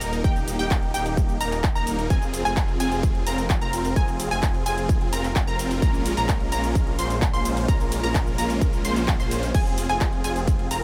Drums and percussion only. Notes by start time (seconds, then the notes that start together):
0.01 open hi-hat, cabasa
0.13 closed hi-hat, cabasa
0.24 kick, closed hi-hat, cabasa
0.36 closed hi-hat, cabasa
0.48 open hi-hat, cabasa
0.59 closed hi-hat, cabasa
0.71 kick, clap, closed hi-hat, cabasa
0.83 closed hi-hat
0.94 open hi-hat, cabasa
1.06 closed hi-hat, cabasa
1.17 kick, closed hi-hat, cabasa
1.29 closed hi-hat, cabasa
1.41 open hi-hat, cabasa
1.52 clap, closed hi-hat, cabasa
1.64 kick, clap, closed hi-hat, cabasa
1.75 closed hi-hat, cabasa
1.87 open hi-hat, cabasa
1.99 closed hi-hat, cabasa
2.10 kick, closed hi-hat, ride, cabasa
2.22 closed hi-hat, cabasa
2.34 open hi-hat, ride, cabasa
2.45 closed hi-hat, cabasa
2.57 kick, clap, closed hi-hat, ride, cabasa
2.69 closed hi-hat
2.80 open hi-hat, ride, cabasa
2.92 closed hi-hat, cabasa
3.03 kick, closed hi-hat, ride, cabasa
3.15 closed hi-hat
3.27 open hi-hat, ride, cabasa
3.38 closed hi-hat, cabasa
3.50 kick, clap, closed hi-hat, ride, cabasa
3.61 closed hi-hat, cabasa
3.73 open hi-hat, ride, cabasa
3.85 closed hi-hat, cabasa
3.96 kick, closed hi-hat, ride, cabasa
4.08 closed hi-hat, cabasa
4.20 open hi-hat, ride, cabasa
4.31 closed hi-hat, cabasa
4.43 kick, clap, closed hi-hat, ride, cabasa
4.54 closed hi-hat
4.66 open hi-hat, ride, cabasa
4.78 closed hi-hat, cabasa
4.89 kick, closed hi-hat, ride, cabasa
5.01 closed hi-hat
5.13 open hi-hat, ride, cabasa
5.24 clap, closed hi-hat, cabasa
5.36 kick, clap, closed hi-hat, ride, cabasa
5.48 closed hi-hat, cabasa
5.59 open hi-hat, ride, cabasa
5.71 closed hi-hat, cabasa
5.82 kick, closed hi-hat, ride, cabasa
5.94 closed hi-hat, cabasa
6.06 open hi-hat, ride, cabasa
6.17 closed hi-hat, cabasa
6.29 kick, clap, closed hi-hat, ride, cabasa
6.40 closed hi-hat
6.52 open hi-hat, ride, cabasa
6.64 closed hi-hat, cabasa
6.75 kick, closed hi-hat, ride, cabasa
6.87 closed hi-hat
6.99 open hi-hat, ride, cabasa
7.10 closed hi-hat, cabasa
7.22 kick, clap, closed hi-hat, ride, cabasa
7.34 closed hi-hat, cabasa
7.45 open hi-hat, ride, cabasa
7.57 closed hi-hat, cabasa
7.68 kick, closed hi-hat, ride, cabasa
7.80 closed hi-hat, cabasa
7.92 open hi-hat, ride, cabasa
8.04 closed hi-hat, cabasa
8.15 kick, clap, closed hi-hat, ride, cabasa
8.27 closed hi-hat, cabasa
8.38 open hi-hat, ride, cabasa
8.50 closed hi-hat, cabasa
8.61 kick, closed hi-hat, ride, cabasa
8.73 closed hi-hat, cabasa
8.85 open hi-hat, ride, cabasa
8.96 clap, closed hi-hat, cabasa
9.08 kick, clap, closed hi-hat, ride, cabasa
9.20 closed hi-hat, cabasa
9.31 open hi-hat, ride, cabasa
9.43 closed hi-hat, cabasa
9.54 kick, closed hi-hat, crash, ride, cabasa
9.66 closed hi-hat, cabasa
9.78 open hi-hat, ride, cabasa
9.89 closed hi-hat, cabasa
10.01 kick, clap, closed hi-hat, ride, cabasa
10.13 closed hi-hat
10.24 open hi-hat, ride, cabasa
10.36 closed hi-hat, cabasa
10.47 kick, closed hi-hat, ride, cabasa
10.59 closed hi-hat
10.71 open hi-hat, ride, cabasa